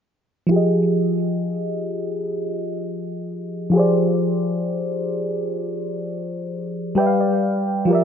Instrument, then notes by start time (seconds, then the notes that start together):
fm electric piano
0.47 F3 F4
0.51 G4 G#4
0.56 D#5
3.70 F3 F4 G4
3.75 G#4 C5 D5
6.95 G3 G4 B4 D5 G5
7.00 E5
7.07 F5
7.21 D5
7.85 F3 F4 G4
7.91 A#4 D5 E5